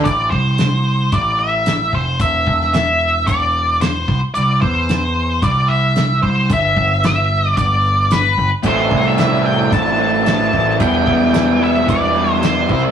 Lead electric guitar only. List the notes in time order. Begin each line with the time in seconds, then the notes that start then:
0.04 D5
0.30 C5
1.14 D5
1.39 E5
1.95 C5
2.21 E5
2.74 E5
3.27 D5
3.82 C5
4.34 D5
4.61 C5
5.43 D5
5.68 E5
6.22 C5
6.53 E5
7.06 E5
7.58 D5
8.12 B4
8.67 C5
9.08 E5
9.45 G5
9.73 A5
10.29 A5
10.82 G5
11.64 E5
11.90 D5
12.33 C5
12.46 C5